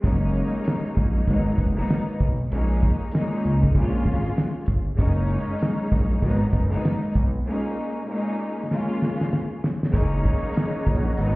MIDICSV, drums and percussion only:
0, 0, Header, 1, 2, 480
1, 0, Start_track
1, 0, Key_signature, 6, "major"
1, 0, Tempo, 618557
1, 31, Time_signature, 4, 2, 24, 8
1, 8812, End_track
2, 0, Start_track
2, 0, Title_t, "Drums"
2, 30, Note_on_c, 9, 36, 117
2, 34, Note_on_c, 9, 42, 114
2, 108, Note_off_c, 9, 36, 0
2, 112, Note_off_c, 9, 42, 0
2, 269, Note_on_c, 9, 42, 67
2, 347, Note_off_c, 9, 42, 0
2, 498, Note_on_c, 9, 42, 90
2, 525, Note_on_c, 9, 38, 109
2, 576, Note_off_c, 9, 42, 0
2, 603, Note_off_c, 9, 38, 0
2, 664, Note_on_c, 9, 42, 51
2, 741, Note_off_c, 9, 42, 0
2, 753, Note_on_c, 9, 36, 96
2, 756, Note_on_c, 9, 42, 73
2, 830, Note_off_c, 9, 36, 0
2, 834, Note_off_c, 9, 42, 0
2, 990, Note_on_c, 9, 36, 95
2, 990, Note_on_c, 9, 42, 87
2, 1067, Note_off_c, 9, 36, 0
2, 1068, Note_off_c, 9, 42, 0
2, 1227, Note_on_c, 9, 36, 94
2, 1233, Note_on_c, 9, 42, 70
2, 1305, Note_off_c, 9, 36, 0
2, 1311, Note_off_c, 9, 42, 0
2, 1475, Note_on_c, 9, 42, 87
2, 1478, Note_on_c, 9, 38, 121
2, 1553, Note_off_c, 9, 42, 0
2, 1556, Note_off_c, 9, 38, 0
2, 1697, Note_on_c, 9, 46, 55
2, 1711, Note_on_c, 9, 36, 90
2, 1775, Note_off_c, 9, 46, 0
2, 1788, Note_off_c, 9, 36, 0
2, 1954, Note_on_c, 9, 42, 113
2, 2031, Note_off_c, 9, 42, 0
2, 2190, Note_on_c, 9, 42, 67
2, 2195, Note_on_c, 9, 36, 87
2, 2267, Note_off_c, 9, 42, 0
2, 2273, Note_off_c, 9, 36, 0
2, 2416, Note_on_c, 9, 42, 90
2, 2444, Note_on_c, 9, 38, 112
2, 2494, Note_off_c, 9, 42, 0
2, 2521, Note_off_c, 9, 38, 0
2, 2582, Note_on_c, 9, 42, 50
2, 2660, Note_off_c, 9, 42, 0
2, 2676, Note_on_c, 9, 42, 72
2, 2753, Note_off_c, 9, 42, 0
2, 2820, Note_on_c, 9, 36, 94
2, 2897, Note_off_c, 9, 36, 0
2, 2909, Note_on_c, 9, 36, 93
2, 2910, Note_on_c, 9, 42, 89
2, 2987, Note_off_c, 9, 36, 0
2, 2987, Note_off_c, 9, 42, 0
2, 3147, Note_on_c, 9, 36, 93
2, 3154, Note_on_c, 9, 42, 71
2, 3225, Note_off_c, 9, 36, 0
2, 3231, Note_off_c, 9, 42, 0
2, 3299, Note_on_c, 9, 42, 55
2, 3377, Note_off_c, 9, 42, 0
2, 3395, Note_on_c, 9, 42, 87
2, 3398, Note_on_c, 9, 38, 120
2, 3473, Note_off_c, 9, 42, 0
2, 3476, Note_off_c, 9, 38, 0
2, 3618, Note_on_c, 9, 42, 76
2, 3631, Note_on_c, 9, 36, 92
2, 3695, Note_off_c, 9, 42, 0
2, 3709, Note_off_c, 9, 36, 0
2, 3870, Note_on_c, 9, 36, 121
2, 3875, Note_on_c, 9, 42, 111
2, 3948, Note_off_c, 9, 36, 0
2, 3953, Note_off_c, 9, 42, 0
2, 4109, Note_on_c, 9, 42, 66
2, 4187, Note_off_c, 9, 42, 0
2, 4338, Note_on_c, 9, 42, 94
2, 4365, Note_on_c, 9, 38, 110
2, 4416, Note_off_c, 9, 42, 0
2, 4443, Note_off_c, 9, 38, 0
2, 4593, Note_on_c, 9, 36, 100
2, 4597, Note_on_c, 9, 42, 73
2, 4670, Note_off_c, 9, 36, 0
2, 4675, Note_off_c, 9, 42, 0
2, 4830, Note_on_c, 9, 36, 95
2, 4830, Note_on_c, 9, 42, 90
2, 4907, Note_off_c, 9, 42, 0
2, 4908, Note_off_c, 9, 36, 0
2, 5067, Note_on_c, 9, 36, 94
2, 5074, Note_on_c, 9, 42, 67
2, 5145, Note_off_c, 9, 36, 0
2, 5151, Note_off_c, 9, 42, 0
2, 5218, Note_on_c, 9, 42, 57
2, 5296, Note_off_c, 9, 42, 0
2, 5315, Note_on_c, 9, 42, 87
2, 5318, Note_on_c, 9, 38, 119
2, 5392, Note_off_c, 9, 42, 0
2, 5395, Note_off_c, 9, 38, 0
2, 5539, Note_on_c, 9, 42, 77
2, 5552, Note_on_c, 9, 36, 93
2, 5617, Note_off_c, 9, 42, 0
2, 5629, Note_off_c, 9, 36, 0
2, 6760, Note_on_c, 9, 38, 58
2, 6838, Note_off_c, 9, 38, 0
2, 7000, Note_on_c, 9, 38, 71
2, 7078, Note_off_c, 9, 38, 0
2, 7148, Note_on_c, 9, 38, 71
2, 7226, Note_off_c, 9, 38, 0
2, 7240, Note_on_c, 9, 38, 88
2, 7318, Note_off_c, 9, 38, 0
2, 7481, Note_on_c, 9, 38, 105
2, 7558, Note_off_c, 9, 38, 0
2, 7629, Note_on_c, 9, 38, 94
2, 7706, Note_off_c, 9, 38, 0
2, 7707, Note_on_c, 9, 82, 70
2, 7711, Note_on_c, 9, 36, 121
2, 7716, Note_on_c, 9, 42, 116
2, 7784, Note_off_c, 9, 82, 0
2, 7788, Note_off_c, 9, 36, 0
2, 7793, Note_off_c, 9, 42, 0
2, 7947, Note_on_c, 9, 82, 50
2, 7949, Note_on_c, 9, 42, 67
2, 7956, Note_on_c, 9, 36, 88
2, 8024, Note_off_c, 9, 82, 0
2, 8027, Note_off_c, 9, 42, 0
2, 8033, Note_off_c, 9, 36, 0
2, 8100, Note_on_c, 9, 82, 47
2, 8178, Note_off_c, 9, 82, 0
2, 8178, Note_on_c, 9, 42, 90
2, 8192, Note_on_c, 9, 82, 76
2, 8205, Note_on_c, 9, 38, 112
2, 8255, Note_off_c, 9, 42, 0
2, 8269, Note_off_c, 9, 82, 0
2, 8283, Note_off_c, 9, 38, 0
2, 8432, Note_on_c, 9, 82, 51
2, 8433, Note_on_c, 9, 36, 101
2, 8437, Note_on_c, 9, 42, 74
2, 8510, Note_off_c, 9, 36, 0
2, 8510, Note_off_c, 9, 82, 0
2, 8515, Note_off_c, 9, 42, 0
2, 8671, Note_on_c, 9, 42, 89
2, 8672, Note_on_c, 9, 82, 73
2, 8748, Note_off_c, 9, 42, 0
2, 8749, Note_off_c, 9, 82, 0
2, 8812, End_track
0, 0, End_of_file